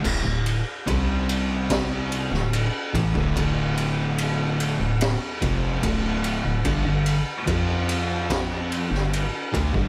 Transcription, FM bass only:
X:1
M:4/4
L:1/16
Q:1/4=73
K:Dm
V:1 name="FM bass" clef=bass
D,,, D,,,2 z C,,6- C,, D,,,2 z A,,, D,,,- | D,,,6- D,,, D,,,2 z F,,,2 D,,,3 D,,, | G,,, G,,,2 z F,,6- F,, G,,,2 z D,, G,,, |]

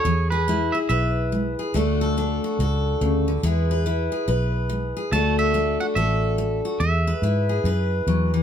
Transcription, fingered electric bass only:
X:1
M:4/4
L:1/8
Q:"Swing" 1/4=142
K:Emix
V:1 name="Fingered electric bass" clef=bass
E,,4 B,,,4 | D,,4 C,,2 D,,2 | E,,4 B,,,4 | D,,4 A,,,4 |
E,,2 G,,2 F,,2 E,,2 |]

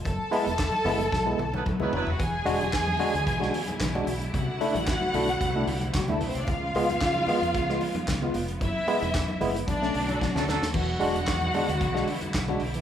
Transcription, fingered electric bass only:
X:1
M:4/4
L:1/16
Q:1/4=112
K:Emix
V:1 name="Fingered electric bass" clef=bass
F,,, z2 E,,,2 z F,,,2 B,,,2 B,,,2 z C,, E,,, ^D,,, | E,,,2 E,,,2 E,,2 z D,, B,,,2 z2 B,,,2 B,,,2 | =C,, z2 A,,,2 z B,,,2 C,,2 C,,2 z D,, B,,, C,, | C,,2 C,,2 C,2 z ^E,, C,,2 z2 C,,2 ^E,,,2 |
F,,, z2 E,,,2 z F,,,2 B,,,2 B,,,2 z D,, D,, ^D,, | E,,,2 E,,,2 E,,2 z D,, B,,,2 z2 B,,,2 B,,,2 |]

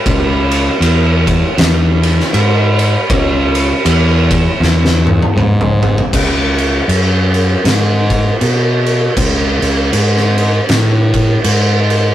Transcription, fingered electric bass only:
X:1
M:4/4
L:1/8
Q:"Swing" 1/4=79
K:C#m
V:1 name="Fingered electric bass" clef=bass
C,,2 E,,2 E,,2 G,,2 | C,,2 E,,2 E,,2 G,,2 | C,,2 F,,2 G,,2 B,,2 | C,, C,, G,,2 A,,2 G,,2 |]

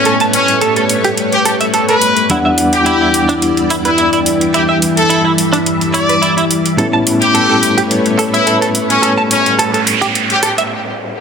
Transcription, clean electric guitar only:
X:1
M:4/4
L:1/16
Q:"Swing 16ths" 1/4=107
K:Amix
V:1 name="Clean electric guitar"
A a z2 A A z G z2 A e A A z2 | E e z2 E E z D z2 E B E E z2 | E e z2 E E z D z2 E B E E z2 | A a z2 A A z G z2 A e A A z2 |
A a z2 A A z G z2 A e z4 |]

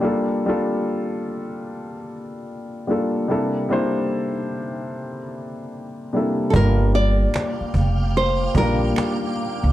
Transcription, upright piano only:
X:1
M:4/4
L:1/16
Q:"Swing 16ths" 1/4=74
K:Gdor
V:1 name="Upright piano"
[G,B,DFA]2 [G,B,DFA]6- [G,B,DFA] z4 z [G,B,DFA]2 | [C,G,B,DEA]2 [C,G,B,DEc]6- [C,G,B,DEc] z4 z [C,G,B,DEA]2 | [G,B,DFB]6- [G,B,DFB] z3 [G,B,DFB]6 |]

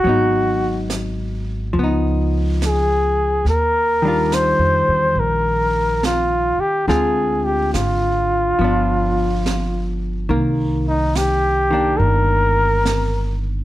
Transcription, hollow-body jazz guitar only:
X:1
M:4/4
L:1/8
Q:"Swing" 1/4=70
K:Cm
V:1 name="Hollow-body jazz guitar"
[_G,_CE]4 [F,CE]4 | z [E,G,DF]6- [E,G,DF] | [D,A,CF]4 [F,=B,D]4 | [E,B,]3 [E,B,D]4- [E,B,D] |]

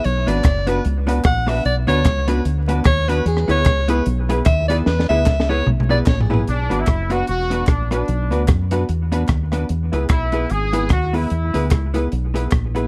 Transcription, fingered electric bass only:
X:1
M:4/4
L:1/8
Q:"Swing" 1/4=149
K:Bdor
V:1 name="Fingered electric bass" clef=bass
B,,, G,,, F,,,2 C,,2 ^A,,,2 | B,,, D,, C,,2 D,,2 ^D,,2 | E,, D,, C,,2 B,,,2 ^D,,2 | E,, D,, C,,2 B,,,2 ^A,,,2 |
B,,, G,,, F,,,2 E,,,2 ^A,,,2 | B,,, D,, F,,2 E,,2 ^D,,2 | E,, C,, B,,,2 G,,,2 ^D,,2 | E,, D,, C,,2 B,,,2 ^A,,,2 |]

